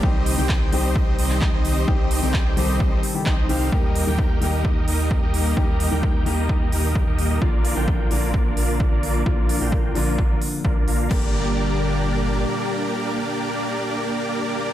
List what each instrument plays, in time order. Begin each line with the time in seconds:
Already playing: analog synth pad G3 G4
0.03 sub bass C2, analog synth pad C3 D#3 D#4, grand piano D#3 G3 C4 G4, supersaw synth C4 D#4 G4 C5 D#5, kick
0.26 open hi-hat
0.37 sub bass C2, grand piano D#3 G3 C4 G4, supersaw synth C4 D#4 G4 C5 G5
0.49 kick, clap
0.71 sub bass C2, grand piano D#3 G3 C4 G4, supersaw synth C4 D#4 G4 C5 D#5, open hi-hat
0.96 kick
1.19 sub bass C2, supersaw synth C4 D#4 G4 C5 D#5, open hi-hat
1.30 clap
1.41 kick, clap
1.53 sub bass C2, supersaw synth C4 D#4 G4 C5 D#5
1.65 open hi-hat
1.87 sub bass C2, grand piano D#3 G3 C4 G4, supersaw synth C4 D#4 G4 C5 D#5, analog synth pad A4, kick
2.11 open hi-hat
2.22 sub bass C2, grand piano D#3 G3 C4 G4, supersaw synth C4 D#4 G4 C5 G5
2.34 kick, clap
2.56 sub bass C2, grand piano D#3 G3 C4 G4, supersaw synth C4 D#4 G4 C5 D#5, open hi-hat
2.80 kick
3.03 open hi-hat
3.14 grand piano D#3 G3 C4 G4
3.26 sub bass C2, supersaw synth C4 D#4 G4 C5 D#5, kick, clap
3.49 sub bass C2, grand piano D#3 G3 C4 G4, supersaw synth C4 D#4 G4 C5 F5, open hi-hat
3.72 sub bass D#2, analog synth pad A#2 D#3 G4, grand piano D#3 G3 A#3 G4, supersaw synth A#3 A#4, kick
3.95 open hi-hat
4.07 sub bass D#2, grand piano D#3 G3 A#3 G4, supersaw synth A#3 D#4 G4 A#4 G5
4.19 kick
4.40 sub bass D#2, grand piano D#3 G3 A#3 G4, supersaw synth A#3 D#4 G4 A#4 D#5, open hi-hat
4.65 kick
4.88 sub bass D#2, supersaw synth A#3 D#4 G4 A#4 D#5, open hi-hat
5.11 kick
5.22 sub bass D#2, supersaw synth A#3 D#4 G4 A#4 D#5
5.34 open hi-hat
5.56 sub bass D#2, grand piano D#3 G3 A#3 G4, supersaw synth A#3 D#4 G4 A#4 D#5, kick
5.80 open hi-hat
5.91 sub bass D#2, grand piano D#3 G3 A#3 G4, supersaw synth A#3 D#4 G4 A#4 G5
6.03 kick
6.25 sub bass D#2, grand piano D#3 G3 A#3 G4, supersaw synth A#3 D#4 G4 A#4 D#5, open hi-hat
6.49 kick
6.72 sub bass D#2, supersaw synth A#3 D#4 G4 A#4 D#5, open hi-hat
6.95 kick
7.07 sub bass D#2, supersaw synth A#3 D#4 G4 A#4 D#5
7.19 open hi-hat
7.41 sub bass A#1, grand piano D3 F3 A#3 F4, analog synth pad D3 F3 D4 F4, supersaw synth A#3 D4 F4, kick
7.65 open hi-hat
7.76 sub bass A#1, grand piano D3 F3 A#3 F4, supersaw synth A#3 D4 F4 A#4 G5
7.88 kick
8.10 sub bass A#1, grand piano D3 F3 A#3 F4, supersaw synth A#3 D4 F4 A#4 D5, open hi-hat
8.34 kick
8.57 sub bass A#1, supersaw synth A#3 D4 F4 A#4 D5, open hi-hat
8.80 kick
8.92 sub bass A#1, supersaw synth A#3 D4 F4 A#4 D5
9.03 open hi-hat
9.26 sub bass A#1, grand piano D3 F3 A#3 F4, supersaw synth A#3 D4 F4 A#4 D5, kick
9.49 open hi-hat
9.60 sub bass A#1, grand piano D3 F3 A#3 F4, supersaw synth A#3 D4 F4 A#4 G5
9.72 kick
9.94 sub bass A#1, grand piano D3 F3 A#3 F4, supersaw synth A#3 D4 F4 A#4 D5, open hi-hat
10.18 kick
10.42 open hi-hat
10.65 sub bass A#1, supersaw synth A#3 D4 F4 A#4 D5, kick
10.88 sub bass A#1, supersaw synth A#3 D4 F4 A#4 F5, open hi-hat
11.09 sub bass G1, analog synth pad A#2 D3 G3 D4 G4, grand piano D3 G3 A#3 G4, supersaw synth A#3 D4 G4 A#4 D5, kick, crash